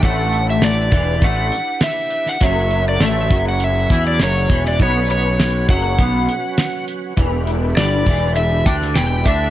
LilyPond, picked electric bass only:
\new Staff \with { instrumentName = "Picked electric bass" } { \clef bass \time 4/4 \key e \dorian \tempo 4 = 101 a,,4. e,,8 a,,8 r4. | fis,,4 a,,8 fis,,4 e,8 fis,,8 e,,8 | b,,4. fis,,8 b,,8 r4. | e,,4 g,,8 e,,4 d,8 e,,8 d,8 | }